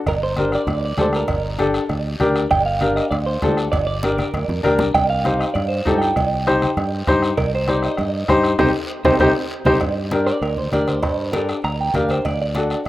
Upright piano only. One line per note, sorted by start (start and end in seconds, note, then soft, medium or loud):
0.38 0.59 D4 medium
0.38 0.59 G4 medium
0.38 0.59 A#4 medium
0.98 1.19 D4 medium
0.98 1.20 G4 medium
0.98 1.20 A4 medium
1.59 1.80 D4 medium
1.59 1.81 G4 medium
1.59 1.81 A4 medium
2.20 2.42 D4 medium
2.20 2.42 G4 medium
2.20 2.42 A#4 medium
2.81 3.03 D4 medium
2.81 3.03 G4 medium
2.81 3.03 A#4 medium
3.43 3.64 D4 medium
3.43 3.64 G4 medium
3.43 3.64 A4 medium
4.04 4.25 D4 medium
4.04 4.25 G4 medium
4.04 4.25 A#4 medium
4.63 4.85 D4 medium
4.63 4.85 G4 medium
4.63 4.86 A#4 loud
5.24 5.46 D#4 medium
5.24 5.47 G4 medium
5.24 5.47 C5 medium
5.85 6.07 D#4 medium
5.85 6.08 G4 medium
5.85 6.08 A4 medium
6.47 6.68 D#4 medium
6.47 6.69 G4 medium
6.47 6.69 C5 medium
7.08 7.29 D#4 medium
7.08 7.29 G4 medium
7.08 7.30 C5 loud
7.68 7.90 D#4 medium
7.68 7.90 G4 medium
7.68 7.90 C5 medium
8.29 8.50 D#4 medium
8.29 8.51 G4 medium
8.29 8.51 C5 loud
8.59 8.69 D#4 loud
8.59 8.69 G4 loud
8.59 8.69 C5 loud
9.05 9.15 D#4 medium
9.05 9.15 G4 medium
9.05 9.15 C5 medium
9.21 9.31 D#4 loud
9.21 9.31 G4 loud
9.21 9.30 C5 loud
9.66 9.76 D#4 medium
9.66 9.76 G4 loud
9.66 9.76 C5 medium
10.12 10.33 D4 medium
10.12 10.34 G4 medium
10.12 10.34 A#4 medium
10.72 10.94 D4 medium
10.72 10.94 G4 medium
10.72 10.94 A#4 medium
11.34 11.55 D4 medium
11.34 11.55 G4 medium
11.34 11.56 A4 medium
11.95 12.16 D4 medium
11.95 12.16 G4 medium
11.95 12.16 A#4 medium
12.56 12.77 D4 medium
12.56 12.78 F#4 medium
12.56 12.78 A4 medium